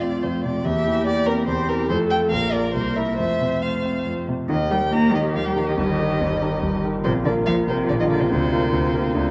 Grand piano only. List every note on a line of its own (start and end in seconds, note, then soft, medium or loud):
0.00 0.22 F2 soft
0.00 0.45 C3 soft
0.00 0.36 C4 soft
0.00 0.15 F4 soft
0.23 0.64 F2 soft
0.45 0.65 C3 soft
0.65 1.46 E2 medium
0.87 1.19 E3 soft
1.07 1.40 G4 soft
1.27 1.60 C4 soft
1.47 1.88 E2 soft
1.69 1.90 E3 soft
1.90 2.31 F2 medium
2.11 2.30 F4 soft
2.11 2.30 A4 soft
2.32 2.73 A#1 soft
2.53 2.72 F4 soft
2.53 2.72 A#4 soft
2.75 3.17 C2 soft
2.97 3.16 E4 soft
2.97 3.17 A#4 soft
3.19 4.05 F2 soft
3.41 3.76 C3 soft
3.63 3.98 F4 soft
3.85 4.20 C4 soft
4.07 4.49 F2 soft
4.29 4.50 C3 soft
4.49 4.70 D#2 medium
4.49 4.70 D#3 medium
4.71 4.90 D#4 soft
4.71 4.90 G4 soft
4.71 4.91 A#4 soft
4.92 5.13 D#2 soft
4.92 5.13 D#3 soft
5.13 5.33 D#4 soft
5.13 5.33 G4 soft
5.13 5.33 A#4 soft
5.35 5.56 D#2 soft
5.35 5.56 D#3 medium
5.56 5.75 D#4 soft
5.56 5.76 G4 soft
5.56 5.76 A#4 soft
5.78 5.98 G1 medium
5.78 5.98 G2 medium
5.99 6.18 D#4 soft
5.99 6.18 G4 soft
5.99 6.19 A#4 soft
6.21 6.41 G1 soft
6.21 6.41 G2 soft
6.42 6.61 D#4 soft
6.42 6.61 G4 soft
6.42 6.61 A#4 soft
6.63 6.83 G1 soft
6.63 6.83 G2 soft
6.84 7.03 D#4 soft
6.84 7.03 G4 soft
6.84 7.03 A#4 soft
7.05 7.25 A#1 medium
7.05 7.25 A#2 medium
7.26 7.45 A#3 medium
7.26 7.45 F4 soft
7.26 7.45 A#4 soft
7.48 7.68 A#1 medium
7.48 7.68 A#2 medium
7.69 7.88 A#3 soft
7.69 7.88 F4 soft
7.69 7.88 A#4 soft
7.90 8.10 A#1 medium
7.90 8.10 A#2 soft
8.11 8.29 A#3 soft
8.11 8.29 F4 soft
8.11 8.30 A#4 medium
8.31 8.51 D2 medium
8.31 8.51 D3 medium
8.52 8.71 A#3 soft
8.52 8.71 F4 soft
8.52 8.71 A#4 medium
8.72 8.93 D2 medium
8.72 8.93 D3 medium
8.94 9.13 A#3 soft
8.94 9.13 F4 soft
8.94 9.13 A#4 medium
9.15 9.31 D2 medium
9.15 9.31 D3 medium